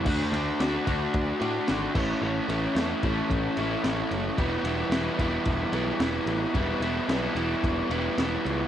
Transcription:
<<
  \new Staff \with { instrumentName = "Overdriven electric guitar" } { \time 4/4 \key e \dorian \tempo 4 = 110 <d a d' fis'>8 <a d' fis'>8 <d a d' fis'>8 <a d' fis'>4 <a d' fis'>8 <d a d' fis'>8 <a, e a cis' e'>8 | <a, e a cis' e'>8 <a cis' e'>8 <e a cis' e'>8 <a cis' e'>4 <a cis' e'>8 <a, e a cis' e'>4 | <e g b e'>8 <g b e'>8 <e g b e'>8 <g b e'>4 <g b e'>8 <e g b e'>4 | <e g b e'>8 <g b e'>8 <e g b e'>8 <g b e'>4 <g b e'>8 <e g b e'>4 | }
  \new Staff \with { instrumentName = "Picked electric bass" } { \clef bass \time 4/4 \key e \dorian d,8 d,8 d,8 d,8 d,8 a,8 gis,,8 a,,8 | a,,8 a,,8 e,8 a,,8 a,,8 a,,8 a,,8 fis,,8 | e,,8 e,,8 e,,8 e,,8 e,,8 b,,8 e,,8 a,,8 | e,,8 e,,8 b,,8 e,,8 e,,8 e,,8 e,,8 cis,8 | }
  \new DrumStaff \with { instrumentName = "Drums" } \drummode { \time 4/4 <cymc bd>8 cymr8 <cymr sn>8 <bd cymr>8 <bd cymr>8 cymr8 <cymr sn>8 <cymc bd>8 | r8 cymr8 <cymr sn>8 <bd cymr>8 <bd cymr>8 cymr8 <cymr sn>8 cymr8 | <bd cymr>8 cymr8 <cymr sn>8 <bd cymr>8 <bd cymr>8 cymr8 <cymr sn>8 cymr8 | <bd cymr>8 cymr8 <cymr sn>8 cymr8 <bd cymr>8 cymr8 <cymr sn>8 cymr8 | }
>>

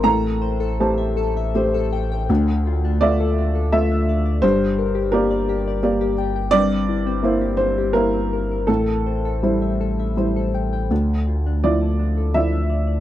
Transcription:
<<
  \new Staff \with { instrumentName = "Synth pluck" } { \time 3/4 \key d \minor \tempo 4 = 84 a'16 r16 c''16 a'16 r16 e''16 a'16 e''16 c''16 a'16 g''16 g''16 | d'16 r16 f'16 d'16 r16 a'16 d'16 a'16 f'16 d'16 d''16 d''16 | g'16 r16 bes'16 g'16 r16 d''16 g'16 d''16 bes'16 g'16 g''16 g''16 | c'16 r16 e'16 c'16 r16 g'16 c'16 g'16 e'16 c'16 bes'16 bes'16 |
a'16 r16 c''16 a'16 r16 e''16 a'16 e''16 c''16 a'16 g''16 g''16 | d'16 r16 f'16 d'16 r16 a'16 d'16 a'16 f'16 d'16 d''16 d''16 | }
  \new Staff \with { instrumentName = "Upright piano" } { \time 3/4 \key d \minor << { bes''4 a''4 r4 | r4 d''4 e''4 | c''4 bes'4. r8 | d''4. c''8 bes'4 |
a'2~ a'8 r8 | r4 d''4 e''4 | } \\ { a,4 <a g' c''>4 <a g' c''>4 | d,4 <a f' e''>4 <a f'>4 | g,4 <bes g' d''>4 <bes g' d''>4 | g,4 <bes e' c''>4 <bes e' c''>4 |
a,4 <g e' c''>4 <g e' c''>4 | d,4 <f e'>4 <f e' d''>4 | } >> }
  \new Staff \with { instrumentName = "Sub bass" } { \clef bass \time 3/4 \key d \minor a,,2. | d,2. | g,,2.~ | g,,2. |
a,,2. | d,2. | }
>>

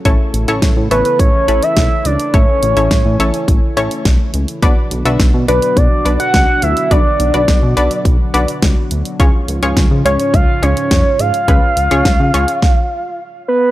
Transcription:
<<
  \new Staff \with { instrumentName = "Soft synth lead" } { \time 4/4 \key a \major \tempo 4 = 105 r4. b'16 b'16 cis''8. e''8. d''8 | cis''2 r2 | r4. b'16 b'16 d''8. fis''8. e''8 | d''2 r2 |
r4. cis''16 cis''16 eis''8 cis''4 eis''8~ | eis''2. r8 b'8 | }
  \new Staff \with { instrumentName = "Synth pluck" } { \time 4/4 \key a \major <cis' e' a' cis''>8 r16 <cis' e' a' cis''>8 r16 <cis' e' a' cis''>8. r16 <cis' e' a' b'>4 r8 | <cis' e' a' cis''>8 r16 <cis' e' a' cis''>8 r16 <cis' e' a' cis''>8. r16 <cis' e' a' cis''>4 r8 | <d' fis' b' d''>8 r16 <d' fis' b' e''>8 r16 <d' fis' b' d''>8. r16 <d' fis' b' d''>4 r8 | <d' fis' b' d''>8 r16 <d' fis' b' d''>8 r16 <d' fis' b' d''>8. r16 <d' fis' b' d''>4 r8 |
<cis' eis' gis' cis''>8 r16 <cis' eis' gis' cis''>8 r16 <cis' eis' gis' cis''>8. r16 <cis' eis' gis' cis''>4 r8 | <cis' eis' gis' b'>8 r16 <cis' eis' gis' cis''>8 r16 <cis' eis' gis' cis''>8 r2 | }
  \new Staff \with { instrumentName = "Analog synth pad" } { \clef bass \time 4/4 \key a \major << { a'1 | gis''1 | fis'1~ | fis'1 |
eis'1~ | eis'2 r2 | } \\ { <cis e a e'>1~ | <cis e a e'>1 | <b, d fis d'>1~ | <b, d fis d'>1 |
<gis, cis eis cis'>1~ | <gis, cis eis cis'>2 r2 | } >> }
  \new Staff \with { instrumentName = "Analog synth bass" } { \clef bass \time 4/4 \key a \major a,,16 r16 a,,16 a,,16 a,,16 a,16 a,,16 r16 a,,16 r16 a,,16 r16 b,,16 r16 cis,16 r16 | a,,16 r16 a,,16 a,,16 a,,16 a,16 a,,16 r16 a,,16 r16 a,,16 r16 b,,16 r16 cis,16 r16 | b,,16 r16 b,,16 b,,16 b,,16 b,16 b,,16 r16 b,,16 r16 b,,16 r16 cis,16 r16 d,16 r16 | b,,16 r16 b,,16 b,,16 b,,16 b,16 b,,16 r16 b,,16 r16 b,,16 r16 cis,16 r16 d,16 r16 |
cis,16 r16 cis,16 cis,16 cis,16 cis16 cis,16 r16 cis,16 r16 cis,16 r16 eis,16 r16 gis,16 r16 | cis,16 r16 cis,16 cis,16 cis,16 cis16 cis,16 r2 r16 | }
  \new DrumStaff \with { instrumentName = "Drums" } \drummode { \time 4/4 <hh bd>8 hh16 hh16 <hh bd sn>8 hh16 hh16 <hh bd>8 hh16 hh16 <hh bd sn>8 hh16 hh16 | <hh bd>8 hh16 hh16 <hh bd sn>8 hh16 hh16 <hh bd>8 hh16 hh16 <hh bd sn>8 hh16 hh16 | <hh bd>8 hh16 hh16 <hh bd sn>8 hh16 hh16 <hh bd>8 hh16 hh16 <hh bd sn>8 hh16 hh16 | <hh bd>8 hh16 hh16 <hh bd sn>8 hh16 hh16 <hh bd>8 hh16 hh16 <hh bd sn>8 hh16 hh16 |
<hh bd>8 hh16 hh16 <hh bd sn>8 hh16 hh16 <hh bd>8 hh16 hh16 <hh bd sn>8 hh16 hh16 | <hh bd>8 hh16 hh16 <hh bd sn>8 hh16 hh16 <bd sn>4 r4 | }
>>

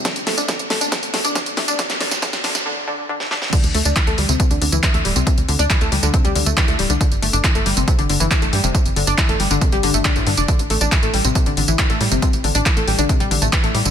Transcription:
<<
  \new Staff \with { instrumentName = "Synth pluck" } { \clef bass \time 4/4 \key bes \lydian \tempo 4 = 138 d16 r16 a16 d'16 d16 r16 a16 d'16 d16 r16 a16 d'16 d16 r16 a16 d'16 | d16 r16 d16 r16 d16 r16 d16 r16 d16 r16 d16 r16 d16 r16 d16 r16 | d16 r16 a16 d'16 e16 a16 g16 c16 c16 d16 d16 e16 e16 a16 g16 c16 | c16 r16 d16 d'16 e16 a16 g16 d16 c16 g16 d16 a16 e16 a16 g16 d16 |
d16 r16 a16 d'16 e16 a16 g16 c16 c16 d16 d16 e16 e16 a16 g16 c16 | c16 r16 d16 d'16 e16 a16 g16 d16 c16 g16 d16 a16 d16 a,16 d16 d'16 | d16 r16 a16 d'16 e16 a16 g16 c16 c16 d16 d16 e16 r16 a16 g16 c16 | c16 r16 d16 d'16 e16 a16 g16 d16 c16 g16 d16 a16 e16 a16 g16 d16 | }
  \new Staff \with { instrumentName = "Analog synth bass" } { \clef bass \time 4/4 \key bes \lydian r16 bes,,16 bes,,16 bes,,16 r16 bes,,16 bes,,16 bes,,16 r16 bes,,16 bes,,16 bes,,16 r16 bes,,16 bes,16 f,,16 | r16 bes,,16 bes,,16 bes,,16 r16 bes,,16 bes,,16 bes,,16 r2 | r16 d,16 d,16 d,16 r16 d,16 d,16 d,16 r16 d,16 d,16 d,16 r16 d,16 d,,16 c,16 | r16 d,16 d,16 d,16 r16 d,16 d,16 d,16 r16 d,16 d,16 d,16 r16 d,16 d,,16 c,16 |
r16 g,,16 g,,16 g,,16 r16 g,,16 g,,16 g,,16 r16 g,,16 g,,16 g,,16 r16 g,,16 g,16 f,,16 | r16 g,,16 g,,16 g,,16 r16 g,,16 g,,16 g,,16 r16 g,,16 g,,16 g,,16 r16 g,,16 g,16 f,,16 | r16 a,,16 a,,16 a,,16 r16 a,,16 a,,16 a,,16 r16 a,,16 a,,16 a,,16 r16 a,,16 a,16 g,,16 | r16 a,,16 a,,16 a,,16 r16 a,,16 a,,16 a,,16 r16 a,,16 a,,16 a,,16 r16 a,,16 a,16 g,,16 | }
  \new DrumStaff \with { instrumentName = "Drums" } \drummode { \time 4/4 <hh bd sn tamb>16 <hh tamb>16 <hho sn>16 <hh tamb>16 <hh bd sn tamb>16 <hh tamb>16 <hho sn>16 <hh tamb>16 <hh bd sn tamb>16 <hh tamb>16 <hho sn>16 <hh tamb>16 <hh bd sn tamb>16 <hh tamb>16 <hho sn>16 <hh tamb>16 | <hh bd sn tamb>16 <hh sn tamb>16 <hho sn>16 <hh sn tamb>16 <hh bd sn tamb>16 <hh sn tamb>16 <hho sn>16 <hh sn tamb>16 r4 r16 sn16 sn16 sn16 | <cymc hh bd tamb>16 <hh tamb>16 hho16 <hh tamb>16 <hc hh bd tamb>16 <hh tamb>16 hho16 <hh tamb>16 <hh bd tamb>16 <hh tamb>16 hho16 <hh tamb>16 <hc hh bd tamb>16 <hh tamb>16 hho16 <hh tamb>16 | <hh bd tamb>16 <hh tamb>16 hho16 <hh tamb>16 <hc hh bd tamb>16 <hh tamb>16 hho16 <hh tamb>16 <hh bd tamb>16 <hh tamb>16 hho16 <hh tamb>16 <hc hh bd tamb>16 <hh tamb>16 hho16 <hh tamb>16 |
<hh bd tamb>16 <hh tamb>16 hho16 <hh tamb>16 <hc hh bd tamb>16 <hh tamb>16 hho16 <hh tamb>16 <hh bd tamb>16 <hh tamb>16 hho16 <hh tamb>16 <hc hh bd tamb>16 <hh tamb>16 hho16 <hh tamb>16 | <hh bd tamb>16 <hh tamb>16 hho16 <hh tamb>16 <hc hh bd tamb>16 <hh tamb>16 hho16 <hh tamb>16 <hh bd tamb>16 <hh tamb>16 hho16 <hh tamb>16 <hc hh bd tamb>16 <hh tamb>16 hho16 <hh tamb>16 | <hh bd tamb>16 <hh tamb>16 hho16 <hh tamb>16 <hc hh bd tamb>16 <hh tamb>16 hho16 <hh tamb>16 <hh bd tamb>16 <hh tamb>16 hho16 <hh tamb>16 <hc hh bd tamb>16 <hh tamb>16 hho16 <hh tamb>16 | <hh bd tamb>16 <hh tamb>16 hho16 <hh tamb>16 <hc hh bd tamb>16 <hh tamb>16 hho16 <hh tamb>16 <hh bd tamb>16 <hh tamb>16 hho16 <hh tamb>16 <hc hh bd tamb>16 <hh tamb>16 hho16 <hh tamb>16 | }
>>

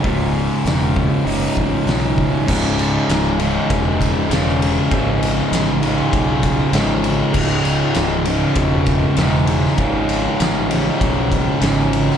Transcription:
<<
  \new Staff \with { instrumentName = "Distorted electric guitar" } { \clef bass \time 4/4 \key cis \minor \tempo 4 = 98 <cis, gis, cis>2 <cis, gis, cis>2 | <cis, gis, cis>4. <cis, gis, cis>4. <cis, gis, cis>4 | <cis, gis, cis>4. <cis, gis, cis>4. <cis, gis, cis>4 | <cis, gis, cis>4. <cis, gis, cis>4. <cis, gis, cis>4 |
<cis, gis, cis>4. <cis, gis, cis>4. <cis, gis, cis>4 | }
  \new Staff \with { instrumentName = "Fingered electric bass" } { \clef bass \time 4/4 \key cis \minor cis,,4 e,,4 fis,,8 a,,8 b,,4 | cis,,4 cis,,4 e,,4 e,,4 | gis,,4 a,,4 b,,4 gis,,4 | cis,,4 cis,,4 e,,4 e,,4 |
gis,,4 a,,4 b,,4 gis,,4 | }
  \new DrumStaff \with { instrumentName = "Drums" } \drummode { \time 4/4 <hho bd>4 <hho sn>8 bd8 hho8 bd8 <hho sn>8 bd8 | <cymc bd>8 cymr8 <cymr sn>8 cymr8 <bd cymr>8 <bd cymr>8 <cymr sn>16 sn16 cymr8 | <bd cymr>8 cymr8 <cymr sn>8 cymr8 <bd cymr>8 <bd cymr>8 <cymr sn>8 cymr8 | <cymc bd>8 cymr8 <cymr sn>8 cymr8 <bd cymr>8 <bd cymr>8 <cymr sn>16 sn16 cymr16 sn16 |
<bd cymr>8 cymr8 <cymr sn>8 cymr8 <bd cymr>8 <bd cymr>8 <cymr sn>16 sn16 cymr16 sn16 | }
>>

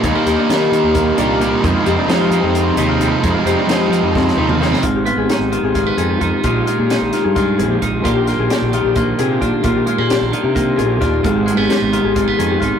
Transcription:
<<
  \new Staff \with { instrumentName = "Harp" } { \time 7/8 \key ees \major \tempo 4 = 131 ees'16 f'16 g'16 d'16 ees'16 f'8 ees'16 bes8 d'16 f'16 ees'8 | ees'16 f'16 g'16 d'16 ees'16 f'8 ees'16 c'8 ees'16 f'16 ees'8 | ees'16 f'16 g'16 d'16 ees'16 f'8 ees'16 c'8 ees'16 f'16 ees'8 | f'16 g'16 f'16 aes'16 g'8 f'16 aes'16 f'8 aes'16 g'16 f'8 |
f'16 g'16 f'16 aes'16 g'8 f'16 aes'16 f'8 aes'16 g'16 f'8 | f'16 g'16 f'16 aes'16 g'8 f'16 g'16 f'8 aes'16 g'16 f'8 | f'16 g'16 f'16 aes'16 g'8 f'16 g'16 f'8 aes'16 g'16 f'8 | f'16 g'16 f'16 aes'16 g'8 f'16 aes'16 f'8 aes'16 g'16 f'8 | }
  \new Staff \with { instrumentName = "Clean electric guitar" } { \time 7/8 \key ees \major << { aes16 bes8. bes'4. g'8 d'8 | aes8 c'8 ees'8 c'4 ees'16 f'16 c'8 | aes8 c'8 ees'8 c'4 ees'16 f'16 bes16 c'16 | r8 ces'8 ees'4 aes16 ces'8. ees'8 |
<ees aes ees' f'>8 aes8 ees'4 aes4 ees'8 | <ees bes d' g'>8 bes8 d'4 bes4 d'8 | r8 aes16 bes16 d'4 bes4 d'8 | r8 aes16 ces'16 ees'4 aes16 ces'8. ees'8 | } \\ { ees,4 ees4. bes,4 | f,4 f4. c4 | f,4 f4. c4 | aes,4. ees4 ees4 |
bes,4. ees4 f,4 | bes,4. ees4 bes,4 | bes,4. ees4 bes,4 | aes,4. ees4 ees4 | } >> }
  \new Staff \with { instrumentName = "Overdriven electric guitar" } { \clef bass \time 7/8 \key ees \major <ees, bes, ees g bes ees'>8 <ees g bes ees'>8 <ees g bes ees'>4. <ees g bes ees'>8 <ees, bes, ees g bes ees'>8 | <f, c f aes c' ees'>8 <f aes c' ees'>8 <f aes c' ees'>4. <f aes c' ees'>8 <f, c f aes c' ees'>8 | <f, c f aes c' ees'>8 <f aes c' ees'>8 <f aes c' ees'>4. <f aes c' ees'>8 <f, c f aes c' ees'>8 | r2. r8 |
r2. r8 | r2. r8 | r2. r8 | r2. r8 | }
  \new Staff \with { instrumentName = "Fingered electric bass" } { \clef bass \time 7/8 \key ees \major ees,16 r16 ees,16 r16 ees8 ees16 ees,8. c,4 | f,16 r16 f,16 r16 f8 f16 f,8. ees,4 | f,16 r16 f,16 r16 f8 f16 f,8. ees,4 | aes,,8. aes,,16 r16 aes,,8 aes,,8. f,8 f,16 r16 |
bes,,8 r16 bes,8 bes,,16 r16 g,8. bes,,8 bes,,8 | bes,,8. bes,,16 r16 bes,,8 bes,,8. c8 bes,,16 r16 | bes,,8 r16 bes,8 bes,,16 r16 c8. bes,,8 ees,8 | aes,,8. aes,,16 r16 aes,,8 aes,,8. f,8 aes,,16 r16 | }
  \new DrumStaff \with { instrumentName = "Drums" } \drummode { \time 7/8 <hh bd>8 <hh sn>8 <hh sn>8 hh8 <hh bd sn>8 hh8 hh8 | <hh bd>8 hh8 <hh sn>8 hh8 hh8 hh8 hh8 | <hh bd>8 hh8 <hh sn>8 hh8 <bd sn>16 sn8 toml16 sn16 sn16 | <hh bd>8 hh8 <hh sn>8 hh8 <hh bd sn>8 hh8 <hh bd>8 |
<hh bd>8 hh8 <hh sn>8 <hh sn>8 <hh bd sn>8 hh8 <hh bd>8 | <hh bd>8 <hh sn>8 <hh sn>8 hh8 <hh bd>8 hh8 <hh bd>8 | <hh bd>8 hh8 <hh sn>8 hh8 <hh bd>8 hh8 <hh bd sn>8 | <hh bd>8 hh8 <hh sn>8 hh8 <hh bd>8 hh8 <hh bd>8 | }
>>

